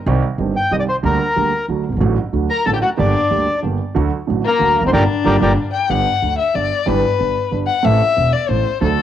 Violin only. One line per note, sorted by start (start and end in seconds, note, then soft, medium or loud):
2.50 2.65 A#4 medium
2.66 2.70 A4 medium
2.73 2.77 G4 medium
2.82 2.89 F#4 medium
2.98 3.59 D4 medium
4.45 4.82 A#3 medium
4.86 4.90 C4 medium
4.95 5.71 D4 medium
5.73 5.92 G5 medium
5.90 6.38 F#5 medium
6.39 6.57 E5 medium
6.55 6.89 D5 medium
6.87 7.52 B4 medium
7.67 7.85 F#5 medium
7.84 8.34 E5 medium
8.33 8.51 D5 medium
8.49 8.82 C5 medium
8.83 9.02 A4 medium